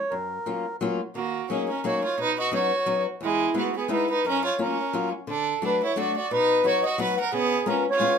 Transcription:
0.00 0.14 C#5 medium
0.11 0.38 F#2 medium
0.11 0.76 A#4 medium
0.46 0.65 F#3 soft
0.46 0.65 A#3 soft
0.46 0.65 C#4 soft
0.46 0.65 F4 medium
0.81 0.99 F#3 medium
0.81 1.00 A#3 medium
0.81 1.00 C#4 medium
0.81 1.00 F4 medium
1.15 1.41 D#3 medium
1.15 1.47 A#3 medium
1.15 1.52 F#4 medium
1.50 1.68 F#3 medium
1.50 1.69 A#3 soft
1.50 1.67 C#4 medium
1.50 1.69 C#4 medium
1.50 1.69 D#4 medium
1.50 1.69 G#4 medium
1.69 1.84 C#4 medium
1.69 1.85 A#4 medium
1.84 2.03 F#3 medium
1.84 2.03 A#3 medium
1.84 2.03 C#4 medium
1.84 2.03 D#4 medium
1.84 2.03 F#4 medium
1.84 2.02 C#5 medium
2.04 2.19 F4 medium
2.04 2.20 C#5 medium
2.18 2.44 B2 medium
2.18 2.37 D#4 medium
2.18 2.39 B4 medium
2.38 2.53 F#4 medium
2.38 2.54 D#5 medium
2.52 2.71 F#3 medium
2.52 2.71 B3 soft
2.52 2.71 C#4 soft
2.52 2.72 D#4 medium
2.52 3.03 F#4 medium
2.52 3.02 C#5 loud
2.86 3.05 F#3 medium
2.86 3.05 B3 medium
2.86 3.05 C#4 medium
2.86 3.05 D#4 medium
3.21 3.47 E2 medium
3.21 3.54 G#3 medium
3.21 3.58 E4 medium
3.54 3.73 G#3 medium
3.54 3.73 B3 soft
3.54 3.73 B3 medium
3.54 3.73 D#4 medium
3.54 3.74 E4 medium
3.58 3.76 F#4 medium
3.77 3.90 B3 medium
3.77 3.91 G#4 medium
3.88 4.07 G#3 medium
3.88 4.08 B3 medium
3.88 4.08 D#4 medium
3.88 4.08 E4 medium
3.88 4.08 B4 medium
4.09 4.24 D#4 medium
4.09 4.25 B4 medium
4.25 4.50 F#2 medium
4.25 4.43 C#4 medium
4.25 4.44 A#4 loud
4.45 4.58 F4 medium
4.45 4.60 C#5 medium
4.58 4.77 F#3 soft
4.58 4.77 A#3 medium
4.58 4.77 C#4 soft
4.58 5.09 C#4 medium
4.58 4.77 F4 medium
4.58 5.09 A#4 medium
4.93 5.12 F#3 medium
4.93 5.12 A#3 soft
4.93 5.12 C#4 soft
4.93 5.12 F4 medium
5.27 5.53 D3 medium
5.27 5.61 D4 medium
5.27 5.64 A4 medium
5.62 5.80 F#3 medium
5.62 5.80 A3 soft
5.62 5.80 D4 medium
5.62 5.81 F#4 medium
5.62 5.82 B4 loud
5.83 5.97 E4 medium
5.83 5.98 C#5 medium
5.96 6.14 F#3 medium
5.96 6.15 A3 medium
5.96 6.15 D4 medium
5.96 6.15 F#4 medium
5.96 6.16 D5 medium
6.17 6.30 F#4 medium
6.17 6.32 D5 medium
6.31 6.57 B2 medium
6.31 6.63 D#4 medium
6.31 6.67 B4 loud
6.64 6.83 F#3 soft
6.64 6.83 B3 medium
6.64 6.83 D#4 medium
6.64 6.83 F#4 medium
6.64 6.84 C#5 loud
6.83 6.99 F#4 medium
6.83 6.99 D#5 loud
6.98 7.17 F#3 medium
6.98 7.17 B3 medium
6.98 7.17 D#4 medium
6.98 7.18 F#4 medium
6.98 7.17 B4 medium
6.98 7.15 F#5 medium
7.17 7.34 A#4 medium
7.17 7.33 F#5 loud
7.33 7.59 C#3 medium
7.33 7.65 B3 loud
7.33 7.68 G#4 loud
7.66 7.85 G#3 medium
7.66 7.85 B3 medium
7.66 7.85 C#4 soft
7.66 7.85 C#4 medium
7.66 7.85 F4 medium
7.66 7.84 A#4 loud
7.90 8.18 F4 medium
7.90 8.18 C#5 loud
8.00 8.18 G#3 medium
8.00 8.18 B3 medium
8.00 8.18 C#4 medium
8.00 8.18 F4 medium

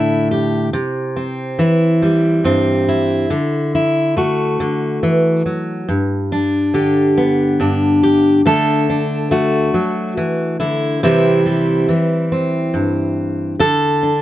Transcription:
0.00 0.73 A2 medium
0.00 0.73 D3 medium
0.00 0.68 A3 medium
0.00 0.69 D4 medium
0.00 0.31 E4 medium
0.31 0.68 G4 soft
0.73 1.59 C3 medium
1.16 2.44 C4 soft
1.59 3.25 E3 medium
1.59 2.87 E4 soft
2.02 3.31 G3 medium
2.44 3.25 G2 medium
2.44 3.26 C4 medium
2.88 3.74 E4 medium
3.30 4.59 D3 medium
3.75 4.17 E4 medium
4.17 5.83 A3 soft
4.17 5.83 F#4 medium
4.60 5.02 D3 medium
5.03 5.45 E3 medium
5.46 5.88 F#3 medium
5.89 7.59 G2 medium
6.32 7.59 D4 soft
6.74 8.44 D3 medium
6.74 8.02 G4 soft
7.18 8.41 B3 soft
7.60 8.40 G2 medium
7.60 8.41 D4 medium
8.03 8.40 G4 medium
8.46 9.74 D3 medium
8.46 9.30 A3 soft
8.46 8.88 D4 soft
8.46 9.31 A4 loud
8.90 10.98 D4 soft
9.31 10.97 A3 medium
9.31 10.59 F#4 medium
9.74 10.17 F#3 medium
10.17 10.60 E3 medium
10.60 11.03 D3 medium
10.60 11.02 E4 medium
11.03 11.89 C3 medium
11.03 11.88 E3 soft
11.03 11.45 G3 soft
11.03 12.31 C4 soft
11.03 13.17 E4 medium
11.46 13.60 G3 soft
11.89 13.55 E3 medium
12.32 13.55 C4 soft
12.74 13.54 G2 medium
13.59 14.22 D3 medium
13.59 14.22 A4 loud
14.03 14.22 D4 soft

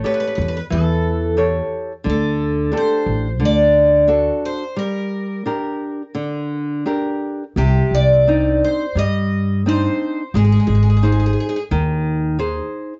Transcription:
0.04 0.57 G4 soft
0.04 0.57 A4 soft
0.04 0.13 B4 medium
0.04 0.58 C#5 soft
0.14 0.19 B4 medium
0.20 0.26 B4 medium
0.27 0.34 B4 soft
0.35 0.59 E2 medium
0.35 0.40 B4 medium
0.41 0.47 B4 medium
0.48 0.56 B4 medium
0.57 0.63 B4 medium
0.70 1.59 E2 medium
0.70 1.35 E3 medium
0.70 1.34 A4 medium
1.37 1.91 G4 soft
1.37 1.91 A4 soft
1.37 1.92 C#5 medium
2.04 2.71 D2 medium
2.04 2.70 D3 medium
2.09 2.77 A4 medium
2.72 3.26 D4 soft
2.72 3.27 G4 soft
2.72 3.27 A4 soft
2.77 3.45 C5 medium
3.06 3.40 A1 medium
3.40 4.29 D2 medium
3.40 4.06 D3 medium
3.45 4.07 D5 medium
4.08 4.63 D4 soft
4.08 4.63 F#4 soft
4.08 4.63 A4 soft
4.45 4.76 C5 medium
4.77 5.44 G3 medium
4.77 6.82 A#4 medium
5.46 6.01 D4 soft
5.46 6.01 G4 soft
5.46 6.02 A#4 soft
6.15 6.83 D3 medium
6.86 7.43 D4 soft
6.86 7.43 G4 soft
6.86 7.43 A#4 soft
7.56 7.79 C2 medium
7.56 8.25 C3 medium
7.56 7.94 G4 medium
7.91 8.59 C2 medium
7.91 8.64 D5 medium
8.27 8.83 C4 soft
8.27 8.83 D4 soft
8.27 8.84 D#4 soft
8.64 8.96 C5 medium
8.95 9.85 G2 medium
8.95 9.64 G3 medium
8.95 9.68 D#5 loud
9.66 10.21 C4 soft
9.66 10.21 D4 soft
9.66 10.22 D#4 medium
9.66 10.36 C5 medium
10.34 10.57 G#1 medium
10.34 11.01 G#3 medium
10.34 10.43 G#4 medium
10.44 10.50 G#4 soft
10.52 10.58 G#4 medium
10.60 10.65 G#4 soft
10.67 11.35 G#1 medium
10.67 10.73 G#4 medium
10.75 10.80 G#4 soft
10.83 10.88 G#4 soft
10.90 10.95 G#4 soft
10.97 11.03 G#4 medium
11.03 11.58 D#4 soft
11.03 11.58 G#4 soft
11.03 11.10 G#4 soft
11.03 11.58 C5 medium
11.12 11.18 G#4 medium
11.20 11.25 G#4 soft
11.26 11.32 G#4 medium
11.33 11.39 G#4 soft
11.40 11.47 G#4 medium
11.49 11.55 G#4 medium
11.56 11.62 G#4 medium
11.71 12.59 D#2 medium
11.71 12.37 D#3 medium
12.39 12.93 D#4 soft
12.39 12.93 G#4 soft
12.39 12.93 C5 medium

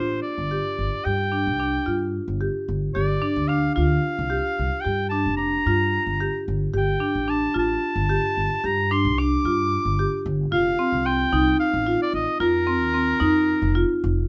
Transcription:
0.00 0.17 A1 medium
0.00 0.28 F4 medium
0.00 0.20 C5 medium
0.22 1.06 D5 medium
0.38 0.58 G1 medium
0.51 0.82 G4 medium
0.79 0.89 G1 medium
1.05 1.48 G2 medium
1.05 1.21 G4 medium
1.05 2.13 G5 medium
1.32 1.47 D4 medium
1.47 1.77 C2 medium
1.60 1.75 D4 medium
1.86 2.18 G2 medium
1.86 2.18 F4 medium
2.28 2.48 G1 medium
2.41 2.72 G4 medium
2.68 2.89 G1 medium
2.94 3.16 G1 medium
2.94 3.11 G4 medium
2.94 3.49 D5 medium
3.22 3.37 D4 medium
3.36 3.67 D2 medium
3.47 3.65 D4 medium
3.47 3.74 F5 medium
3.75 3.97 D2 medium
3.75 4.07 F4 medium
3.75 4.82 F5 medium
4.19 4.39 C2 medium
4.30 4.61 G4 medium
4.59 4.69 C2 medium
4.81 5.00 G4 medium
4.81 5.09 G5 medium
4.86 5.27 G2 medium
5.09 5.27 D4 medium
5.09 5.36 A5 medium
5.26 5.56 F1 medium
5.37 5.54 D4 medium
5.37 6.42 A#5 medium
5.66 5.97 G2 medium
5.66 5.98 F4 medium
6.07 6.27 G1 medium
6.20 6.52 G4 medium
6.48 6.68 G1 medium
6.74 6.95 G1 medium
6.74 6.89 G4 medium
6.78 7.31 G5 medium
7.00 7.16 D4 medium
7.15 7.46 A1 medium
7.28 7.44 D4 medium
7.28 7.56 A5 medium
7.54 7.76 A1 medium
7.54 7.86 F4 medium
7.59 8.67 A5 medium
7.96 8.16 G1 medium
8.09 8.41 G4 medium
8.37 8.47 G1 medium
8.64 9.06 G2 medium
8.64 8.79 G4 medium
8.64 8.93 A#5 medium
8.91 9.07 D4 medium
8.91 9.20 C6 medium
9.05 9.35 C2 medium
9.18 9.34 D4 medium
9.18 10.26 D6 medium
9.45 9.75 G2 medium
9.45 9.76 F4 medium
9.85 10.06 G1 medium
9.99 10.30 G4 medium
10.26 10.46 G1 medium
10.52 10.73 F1 medium
10.52 10.68 F4 medium
10.52 11.07 F5 medium
10.79 10.95 C4 medium
10.92 11.23 C2 medium
11.06 11.22 C4 medium
11.06 11.59 G5 loud
11.32 11.53 C2 medium
11.32 11.64 D#4 medium
11.60 11.98 F5 medium
11.73 11.94 A1 medium
11.87 12.18 F4 medium
12.02 12.14 D5 medium
12.13 12.24 A1 medium
12.13 12.39 D#5 medium
12.40 12.81 F2 medium
12.40 12.56 F4 medium
12.40 13.99 A#4 medium
12.67 12.83 C4 medium
12.81 13.12 D#2 medium
12.94 13.10 C4 medium
13.20 13.52 F2 medium
13.20 13.52 D#4 medium
13.62 13.83 F1 medium
13.75 14.07 F4 medium
14.04 14.24 F1 loud

